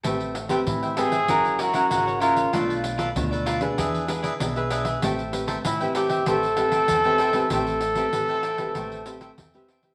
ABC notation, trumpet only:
X:1
M:4/4
L:1/8
Q:1/4=96
K:Am
V:1 name="Trumpet"
z2 E ^G2 ^F2 =F- | F z6 z | z2 E G A4 | A6- A z |]